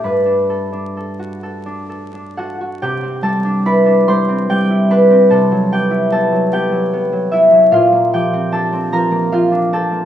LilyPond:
\new Staff \with { instrumentName = "Harp" } { \time 6/8 \key c \lydian \tempo 4. = 49 << { <a' b' d'' fis'' a'' b'' d'''>2~ <a' b' d'' fis'' a'' b'' d'''>8 <fis' fis''>8 | <g' g''>8 <a' a''>8 <b' b''>8 <c'' c'''>8 <g' g''>8 <b' b''>8 | <a' a''>8 <g' g''>8 <a' a''>8 <g' g''>4 <e' e''>8 | <f' f''>8 <g' g''>8 <a' a''>8 <bes' bes''>8 <f' f''>8 <a' a''>8 | } \\ { <g, a d' g'>16 d'16 a'16 d'16 a'16 fis'16 a'16 d'16 a'16 d'16 a'16 fis'16 | c16 c'16 g16 d'16 e'16 d'16 g16 c'16 g16 e'16 d'16 c'16 | c16 fis16 b16 e'16 b16 fis16 b16 fis16 b16 fis8 fis16 | bes,16 bes16 f16 c'16 d'16 c'16 f16 bes16 f16 d'16 c'16 bes16 | } >> }